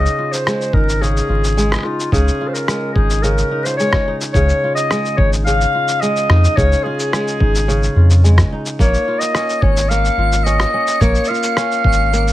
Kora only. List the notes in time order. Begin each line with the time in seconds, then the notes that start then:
Already playing: C#3 C#4 D#4 G#4
0.19 F4
0.47 G#3
0.74 D#4
1.01 C#3
1.29 F4
1.57 G#3
1.85 D#4
2.13 C#3
2.41 F4
2.68 G#3
2.96 D#4
3.24 C#3
3.51 D#4
3.66 F4
3.80 G#3
4.08 D#4
4.36 C#3
4.64 F4
4.91 G#3
5.19 D#4
5.47 C#3
5.75 F4
6.02 G#3
6.30 D#4
6.58 C#3
6.86 F4
7.14 G#3
7.41 D#4
7.68 C#3
7.96 F4
8.24 G#3
8.52 D#4
8.80 A#3
9.08 F4
9.36 C#4
9.63 C#4
9.91 A#3
10.18 F4
10.46 C#4
10.74 C#4
11.02 A#3
11.30 F4
11.57 C#4
11.86 C#4
12.13 A#3